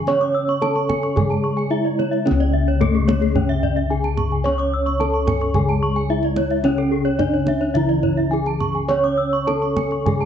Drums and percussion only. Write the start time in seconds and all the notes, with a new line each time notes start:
0.07 kendang high
0.21 kendang slap
0.48 kendang slap
0.62 kendang high
0.76 kendang slap
0.90 kendang high, kendang low
1.03 kendang slap
1.17 kendang low
1.31 kendang slap
1.59 kendang slap
1.99 kendang high
2.13 kendang slap
2.27 kendang high
2.40 kendang slap
2.68 kendang slap
2.81 kendang high, kendang low
3.09 kendang high
3.22 kendang slap
3.36 kendang low
3.63 kendang low
3.77 kendang slap
4.04 kendang slap
4.17 kendang high, kendang low
4.32 kendang slap
4.46 kendang high
4.59 kendang slap
4.87 kendang slap
5.01 kendang high
5.27 kendang high, kendang low
5.41 kendang slap
5.54 kendang low
5.69 kendang slap
5.96 kendang slap
6.23 kendang slap
6.36 kendang high
6.50 kendang slap
6.64 kendang high
6.78 kendang slap
7.05 kendang slap
7.19 kendang high, kendang low
7.47 kendang high
7.61 kendang slap
7.75 kendang low
7.89 kendang slap
8.03 kendang low
8.17 kendang slap
8.46 kendang slap
8.60 kendang high, kendang low
8.75 kendang slap
8.89 kendang high
9.04 kendang slap
9.33 kendang slap
9.48 kendang high
9.63 kendang slap
9.77 kendang high, kendang low
9.91 kendang slap
10.06 kendang low
10.22 kendang slap